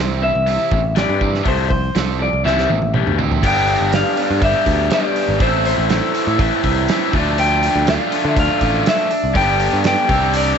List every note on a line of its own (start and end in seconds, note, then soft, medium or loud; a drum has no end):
0.00 0.30 C2 medium
0.00 0.20 C3 medium
0.00 0.20 E3 medium
0.00 0.31 G3 medium
0.00 0.31 C4 medium
0.00 0.31 E4 medium
0.00 0.31 G4 medium
0.00 0.23 C5 medium
0.22 0.45 C3 medium
0.22 0.45 E3 medium
0.22 0.98 E5 loud
0.35 0.57 C2 medium
0.46 0.69 C3 medium
0.46 0.69 E3 medium
0.46 0.79 G3 medium
0.46 0.80 C4 medium
0.46 0.80 E4 medium
0.46 0.80 G4 medium
0.46 open hi-hat soft
0.72 1.04 A1 medium
0.72 0.94 C3 medium
0.72 0.94 E3 medium
0.72 kick medium
0.95 1.18 C3 medium
0.95 1.19 E3 medium
0.95 1.20 G3 medium
0.95 1.44 D5 medium
0.95 snare loud
0.95 open hi-hat soft
1.09 1.41 G2 medium
1.19 1.42 C3 medium
1.19 1.43 E3 medium
1.19 1.47 G3 medium
1.19 1.47 C4 medium
1.19 1.47 E4 medium
1.19 1.47 G4 medium
1.19 kick medium
1.34 snare soft
1.43 1.89 C2 medium
1.43 1.68 C3 medium
1.43 1.68 F3 medium
1.43 1.69 A3 loud
1.43 kick loud
1.43 open hi-hat soft
1.48 1.69 C5 medium
1.69 1.92 C3 medium
1.69 1.93 F3 medium
1.69 2.16 C5 medium
1.69 kick medium
1.95 2.28 C2 medium
1.95 2.17 C3 medium
1.95 2.18 F3 medium
1.95 2.28 F3 medium
1.95 2.28 C4 medium
1.95 2.28 F4 medium
1.95 2.28 A4 medium
1.95 snare medium
1.95 open hi-hat soft
2.19 2.42 C3 medium
2.19 2.42 F3 medium
2.19 2.45 D5 medium
2.33 2.44 C2 medium
2.44 2.66 C2 medium
2.44 2.68 C3 medium
2.44 2.68 E3 medium
2.44 2.77 G3 medium
2.44 2.69 G3 loud
2.44 2.77 C4 medium
2.44 2.77 E4 medium
2.44 2.77 G4 medium
2.44 2.91 E5 medium
2.44 snare medium
2.58 snare soft
2.70 3.02 A1 medium
2.70 2.92 C3 medium
2.70 2.93 E3 medium
2.70 high tom medium
2.82 high tom medium
2.94 3.17 C3 medium
2.94 3.18 E3 medium
2.94 3.18 G3 medium
2.94 mid tom medium
3.07 3.39 D2 medium
3.07 mid tom medium
3.19 3.41 C3 medium
3.19 3.41 E3 medium
3.19 3.40 G3 medium
3.19 3.43 C4 medium
3.19 3.44 E4 medium
3.19 3.43 G4 medium
3.19 floor tom medium
3.32 floor tom medium
3.42 3.75 G1 medium
3.42 4.40 G2 medium
3.42 4.41 D3 medium
3.42 4.15 G3 medium
3.42 4.41 G3 medium
3.42 4.16 B3 medium
3.42 4.41 B3 medium
3.42 4.15 D4 medium
3.42 4.42 D4 medium
3.42 kick loud
3.42 crash loud
3.46 4.42 G4 medium
3.46 3.91 G5 loud
3.68 open hi-hat soft
3.81 4.02 G1 medium
3.93 4.43 F5 medium
3.93 snare loud
3.93 open hi-hat medium
4.16 4.89 G3 medium
4.16 4.90 B3 medium
4.16 4.89 D4 medium
4.16 open hi-hat medium
4.31 4.41 G2 medium
4.42 4.53 G1 medium
4.42 5.39 G2 medium
4.42 5.39 D3 medium
4.42 5.40 G3 medium
4.42 5.40 B3 medium
4.42 5.41 D4 medium
4.42 5.41 G4 medium
4.42 4.89 E5 medium
4.42 kick loud
4.42 open hi-hat medium
4.66 4.88 D2 medium
4.66 kick medium
4.66 open hi-hat medium
4.90 5.39 G3 medium
4.90 5.40 B3 medium
4.90 5.40 D4 medium
4.90 5.41 D5 medium
4.90 snare loud
4.90 open hi-hat medium
5.16 open hi-hat medium
5.28 5.39 G#1 medium
5.39 5.73 A1 medium
5.39 6.37 A2 medium
5.39 6.17 E3 medium
5.39 6.38 E3 medium
5.39 6.39 A3 medium
5.39 6.14 C4 medium
5.39 6.38 C4 loud
5.39 6.40 E4 loud
5.39 6.14 E4 medium
5.39 5.64 C5 medium
5.39 kick loud
5.39 open hi-hat medium
5.65 6.61 C5 medium
5.65 open hi-hat medium
5.78 5.99 A1 medium
5.89 snare loud
5.89 open hi-hat medium
6.14 6.87 E3 medium
6.14 6.88 C4 medium
6.14 6.87 E4 medium
6.14 open hi-hat medium
6.27 6.38 A2 medium
6.38 6.50 A1 loud
6.38 7.11 A2 medium
6.38 7.12 E3 medium
6.38 7.12 A3 medium
6.38 7.12 C4 medium
6.38 7.12 E4 medium
6.38 kick loud
6.38 open hi-hat medium
6.64 6.86 C2 medium
6.64 kick medium
6.64 open hi-hat medium
6.88 7.11 E3 medium
6.88 7.12 C4 medium
6.88 7.13 E4 medium
6.88 snare loud
6.88 open hi-hat medium
7.12 7.67 D2 medium
7.12 8.10 D3 medium
7.12 7.86 F3 medium
7.12 8.11 A3 loud
7.12 7.86 A3 medium
7.12 8.11 D4 loud
7.12 8.09 F4 loud
7.12 kick loud
7.12 open hi-hat medium
7.16 7.90 D4 loud
7.38 7.89 G5 loud
7.38 open hi-hat medium
7.63 open hi-hat medium
7.76 7.97 D2 medium
7.87 8.60 F3 medium
7.87 8.61 A3 medium
7.87 8.61 D4 medium
7.87 8.26 F5 medium
7.87 snare loud
7.87 open hi-hat medium
8.10 9.10 D3 medium
8.10 9.09 A3 medium
8.10 9.36 D4 medium
8.10 9.08 F4 medium
8.10 open hi-hat medium
8.25 8.35 D3 medium
8.25 8.38 E5 medium
8.36 8.47 D2 loud
8.36 8.88 F5 loud
8.36 kick loud
8.36 open hi-hat medium
8.61 8.83 A1 medium
8.61 9.11 F3 medium
8.61 9.10 A3 medium
8.61 9.38 D4 medium
8.61 kick medium
8.61 open hi-hat medium
8.86 9.36 E5 medium
8.86 snare loud
8.86 open hi-hat medium
9.11 open hi-hat medium
9.24 9.34 C2 medium
9.34 9.68 G1 medium
9.34 10.07 G2 medium
9.34 10.07 D3 medium
9.34 10.07 G3 medium
9.34 10.08 B3 medium
9.34 10.08 D4 loud
9.34 10.08 G4 loud
9.34 9.86 G5 loud
9.34 kick loud
9.34 open hi-hat medium
9.38 10.09 D4 medium
9.60 open hi-hat medium
9.73 9.94 G2 medium
9.84 10.32 G5 medium
9.84 snare loud
9.84 open hi-hat medium
10.07 10.52 C2 loud
10.07 10.58 C3 medium
10.07 10.58 G3 medium
10.07 10.58 C4 medium
10.07 10.58 D4 medium
10.07 10.58 G4 loud
10.07 kick loud
10.07 open hi-hat medium
10.12 10.58 C4 medium
10.12 10.58 D4 loud
10.34 10.58 D5 medium
10.34 open hi-hat medium